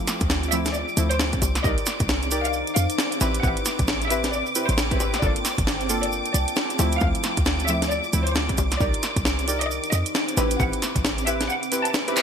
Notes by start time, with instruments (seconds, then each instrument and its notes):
Already playing: synth stab F3 A3 C4 E4, ambient pad F4 E5 G5 A5, string machine D6
0.01 ambient pad D5
0.07 snare, closed hi-hat, cabasa
0.21 808-style bass D2, kick, closed hi-hat, cabasa
0.30 snare, cabasa
0.43 ambient pad C6, closed hi-hat, cabasa
0.52 synth stab F3 A3 C4 E4, violin section E5, closed hi-hat, cabasa
0.65 snare, closed hi-hat, cabasa
0.74 violin section D5, cabasa
0.88 cabasa
0.97 808-style bass D2, synth stab F3 A3 C4 E4, closed hi-hat, cabasa
1.10 violin section C5, closed hi-hat, cabasa
1.19 snare, cabasa
1.33 kick, closed hi-hat, cabasa
1.42 808-style bass C2, ambient pad D#4, closed hi-hat, high bongo, cabasa
1.55 snare, closed hi-hat, cabasa
1.64 808-style bass C2, synth stab D#4 G4 A#4 D5, ambient pad C5, violin section D#5, kick, cabasa
1.78 closed hi-hat, cabasa
1.86 snare, closed hi-hat, cabasa
2.00 808-style bass C2, kick, closed hi-hat, cabasa
2.09 snare, cabasa
2.22 closed hi-hat, cabasa
2.31 synth stab D#4 G4 A#4 D5, closed hi-hat, cabasa
2.44 violin section F5, closed hi-hat, cabasa
2.53 cabasa
2.67 closed hi-hat, cabasa
2.76 808-style bass F2, violin section F5, closed hi-hat, cabasa
2.90 closed hi-hat, cabasa
2.98 snare, cabasa
3.12 closed hi-hat, cabasa
3.21 808-style bass A1, ambient pad C4, synth stab C4 E4 G4 B4, snare, closed hi-hat, high bongo, cabasa
3.34 closed hi-hat, cabasa
3.43 808-style bass A1, synth stab C4 E4 G4 B4, violin section F#5, kick, cabasa
3.53 ambient pad G5, closed hi-hat, cabasa
3.61 ambient pad B4
3.65 snare, closed hi-hat, cabasa
3.79 808-style bass A1, kick, closed hi-hat, cabasa
3.87 snare, cabasa
4.02 closed hi-hat, cabasa
4.11 synth stab C4 E4 G4 B4, violin section E5, ambient pad A5, closed hi-hat, cabasa
4.24 snare, closed hi-hat, cabasa
4.33 violin section D5, cabasa
4.46 cabasa
4.55 synth stab C4 E4 G4 B4, closed hi-hat, cabasa
4.69 808-style bass A1, violin section C5, closed hi-hat, cabasa
4.78 snare, cabasa
4.91 synth stab C4 E4 G4 B4, kick, closed hi-hat, cabasa
5.00 synth stab C4 E4 G4 B4, closed hi-hat, high bongo, cabasa
5.14 snare, closed hi-hat, cabasa
5.22 808-style bass G1, synth stab A#3 D4 F4 A4, ambient pad F4, violin section D5, kick, cabasa
5.36 closed hi-hat, cabasa
5.45 snare, closed hi-hat, cabasa
5.58 808-style bass G1, kick, closed hi-hat, cabasa
5.67 snare, cabasa
5.81 closed hi-hat, cabasa
5.89 synth stab A#3 D4 F4 A4, closed hi-hat, cabasa
6.03 violin section D5, closed hi-hat, cabasa
6.12 cabasa
6.26 closed hi-hat, cabasa
6.34 808-style bass C2, violin section D5, closed hi-hat, cabasa
6.48 closed hi-hat, cabasa
6.56 snare, cabasa
6.70 closed hi-hat, cabasa
6.79 808-style bass D2, synth stab F3 A3 C4 E4, snare, closed hi-hat, high bongo, cabasa
6.92 closed hi-hat, cabasa
7.00 808-style bass D2, synth stab F3 A3 C4 E4, violin section F5, kick, cabasa
7.15 closed hi-hat, cabasa
7.23 snare, closed hi-hat, cabasa
7.37 808-style bass D2, ambient pad D5, kick, closed hi-hat, cabasa
7.45 snare, cabasa
7.59 ambient pad C6, closed hi-hat, cabasa
7.68 synth stab F3 A3 C4 E4, violin section E5, closed hi-hat, cabasa
7.82 snare, closed hi-hat, cabasa
7.91 violin section D5, cabasa
8.04 cabasa
8.13 808-style bass D2, synth stab F3 A3 C4 E4, closed hi-hat, cabasa
8.27 violin section C5, closed hi-hat, cabasa
8.35 snare, cabasa
8.49 kick, closed hi-hat, cabasa
8.57 808-style bass C2, ambient pad D#4, closed hi-hat, high bongo, cabasa
8.71 snare, closed hi-hat, cabasa
8.80 808-style bass C2, synth stab D#4 G4 A#4 D5, violin section D5, kick, cabasa
8.93 closed hi-hat, cabasa
9.03 snare, closed hi-hat, cabasa
9.16 808-style bass C2, kick, closed hi-hat, cabasa
9.25 snare, cabasa
9.39 closed hi-hat, cabasa
9.48 synth stab D#4 G4 A#4 D5, closed hi-hat, cabasa
9.61 violin section D#5, closed hi-hat, cabasa
9.71 cabasa
9.84 closed hi-hat, cabasa
9.92 808-style bass F2, violin section D#5, closed hi-hat, cabasa
10.06 closed hi-hat, cabasa
10.15 snare, cabasa
10.28 closed hi-hat, cabasa
10.37 808-style bass A1, ambient pad C4, synth stab C4 E4 G4 B4, snare, closed hi-hat, high bongo, cabasa
10.51 ambient pad B4, closed hi-hat, cabasa
10.60 808-style bass A1, synth stab C4 E4 G4 B4, violin section F#5, kick, cabasa
10.73 closed hi-hat, cabasa
10.82 ambient pad G5, snare, closed hi-hat, cabasa
10.96 808-style bass A1, kick, closed hi-hat, cabasa
11.05 ambient pad A5, snare, cabasa
11.18 closed hi-hat, cabasa
11.27 synth stab C4 E4 G4 B4, violin section E5, closed hi-hat, cabasa
11.41 snare, closed hi-hat, cabasa
11.50 violin section F#5, cabasa
11.63 closed hi-hat, cabasa
11.72 synth stab C4 E4 G4 B4, closed hi-hat, cabasa
11.85 violin section A5, closed hi-hat, cabasa
11.94 snare, cabasa
12.08 synth stab C4 E4 G4 B4, closed hi-hat, cabasa
12.16 synth stab C4 E4 G4 B4, clap, closed hi-hat, high bongo, cabasa